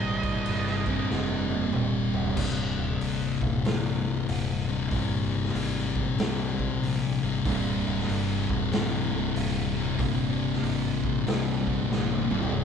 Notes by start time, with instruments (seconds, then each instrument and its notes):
Already playing: fingered electric bass G#1, distorted electric guitar C2 G2 C3, lead electric guitar D#5
0.23 kick, crash
0.46 fingered electric bass G1, crash
0.67 snare
0.86 distorted electric guitar C2 G2 C3, kick, crash
1.11 fingered electric bass F1, snare
1.50 high tom
1.61 high tom
1.73 fingered electric bass D#1, mid tom
2.14 floor tom
2.26 floor tom
2.37 fingered electric bass C1, distorted electric guitar C2 G2 C3, kick, crash
2.79 fingered electric bass D#1
3.01 fingered electric bass G1, open hi-hat
3.42 fingered electric bass D#1, kick
3.64 fingered electric bass A#1, snare, open hi-hat
4.05 fingered electric bass C1
4.28 fingered electric bass D#1, open hi-hat
4.69 distorted electric guitar C2 G2 C3
4.91 fingered electric bass G1, distorted electric guitar C2 G2 C3, kick, open hi-hat
5.45 snare
5.55 fingered electric bass G#1, open hi-hat
5.96 kick
6.18 fingered electric bass C2, snare, open hi-hat
6.60 kick
6.82 fingered electric bass A#1, open hi-hat
7.22 fingered electric bass G#1, distorted electric guitar C2 G2 C3
7.45 fingered electric bass C1, distorted electric guitar C2 G2 C3, kick, open hi-hat
7.86 fingered electric bass D#1
7.99 snare
8.09 fingered electric bass G1, open hi-hat
8.49 fingered electric bass D#1, kick
8.72 fingered electric bass A#1, snare, open hi-hat
9.12 fingered electric bass C1, distorted electric guitar C2 G2 C3
9.36 fingered electric bass D#1, distorted electric guitar C2 G2, open hi-hat
9.40 distorted electric guitar C3
9.77 distorted electric guitar C2 G2 C3
9.99 fingered electric bass G1, distorted electric guitar C2 G2 C3, kick, open hi-hat
10.54 snare
10.63 fingered electric bass G#1, open hi-hat
11.04 kick
11.27 fingered electric bass C2, snare, open hi-hat
11.66 distorted electric guitar G2 C3, kick
11.70 distorted electric guitar C2
11.89 fingered electric bass A#1, distorted electric guitar C2 G2 C3, snare
12.11 high tom
12.29 fingered electric bass G#1, distorted electric guitar C2 G2 C3, mid tom
12.43 floor tom
12.52 fingered electric bass C1, distorted electric guitar C2 G2 C3